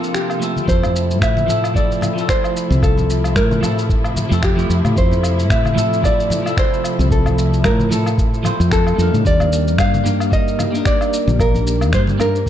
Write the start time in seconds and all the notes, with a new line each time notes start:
Already playing: C3 F3 A#3 C4 D4 F4 A4
0.04 shaker
0.14 G4, finger snap, shaker
0.30 low woodblock, shaker
0.39 F3 A3 C4 E4 A4, shaker
0.57 high conga, shaker
0.64 F2 F3 A3 C4
0.68 C3 E4 A4 C5, kick, shaker
0.83 low conga, low woodblock, shaker
0.96 shaker
1.11 shaker
1.21 A2 E5, finger snap, kick, low woodblock, shaker
1.37 high conga, shaker
1.46 F3 A3 C4 E4 A4, low conga, shaker
1.64 low woodblock, shaker
1.74 F3 A3 C4 E4 A4 D5, kick, shaker
1.92 shaker
2.01 high conga, low conga, low woodblock, shaker
2.14 F3 A3 C4
2.18 E4 A4, shaker
2.29 C5, finger snap, kick, shaker
2.44 low woodblock, shaker
2.57 shaker
2.70 C2, high conga, shaker
2.82 A4, kick, low woodblock, shaker
2.98 low conga, shaker
3.10 shaker
3.24 low woodblock, shaker
3.36 A2 A#4, finger snap, kick, shaker
3.51 high conga, shaker
3.61 F3 A3 C4 E4 A4, low conga, low woodblock, shaker
3.79 shaker
3.89 kick, shaker
4.04 low woodblock, shaker
4.16 high conga, low conga, shaker
4.29 F2 F3 A3 C4 E4 A4, shaker
4.43 G4, finger snap, kick, low woodblock, shaker
4.56 F3 A3 C4 E4 G4, shaker
4.70 F2, shaker
4.85 A2, high conga, low woodblock, shaker
4.96 F2 C5, kick, shaker
5.11 low conga, shaker
5.23 low woodblock, shaker
5.39 shaker
5.50 A2 E5, finger snap, kick, shaker
5.65 high conga, low woodblock, shaker
5.75 F3 A3 C4 E4 A4, low conga, shaker
5.93 shaker
6.01 F3 A3 C4 E4 A4, kick, low woodblock, shaker
6.05 D5
6.20 shaker
6.30 high conga, low conga, shaker
6.42 F3 A3 C4
6.46 E4 A4, low woodblock, shaker
6.57 C5, finger snap, kick, shaker
6.74 shaker
6.84 low woodblock, shaker
6.99 C2, high conga, shaker
7.11 A4, kick, shaker
7.26 low conga, low woodblock, shaker
7.38 shaker
7.54 shaker
7.64 A2 A#4, finger snap, kick, low woodblock, shaker
7.80 high conga, shaker
7.89 F3 A3 C4 E4 A4, low conga, shaker
8.06 low woodblock, shaker
8.18 kick, shaker
8.34 shaker
8.43 F3 A3 C4 E4 C5, high conga, low conga, low woodblock, shaker
8.60 F2, shaker
8.71 A4, finger snap, kick, shaker
8.87 low woodblock, shaker
8.95 F2 G3 A#3 D4
8.99 D#4 A#4, shaker
9.13 A2, high conga, shaker
9.24 D#2 G3 A#3 D5, kick, shaker
9.40 low conga, low woodblock, shaker
9.53 shaker
9.68 shaker
9.78 G2 F5, finger snap, kick, low woodblock, shaker
9.94 high conga, shaker
10.04 G3 A#3 D4 D#4 A#4, low conga, shaker
10.20 low woodblock, shaker
10.30 G3 A#3 D#4 A#4 D#5, kick, shaker
10.48 shaker
10.59 high conga, low conga, low woodblock, shaker
10.70 G3 A#3 D4
10.75 D#4 A#4, shaker
10.85 D5, finger snap, kick, shaker
11.01 low woodblock, shaker
11.13 shaker
11.27 A#1, high conga, shaker
11.39 A#4, kick, low woodblock, shaker
11.55 low conga, shaker
11.67 shaker
11.81 low woodblock, shaker
11.93 G2 C5, finger snap, kick, shaker
12.07 high conga, shaker
12.18 G3 A#3 D4 D#4 A#4, low conga, low woodblock, shaker
12.35 shaker
12.46 kick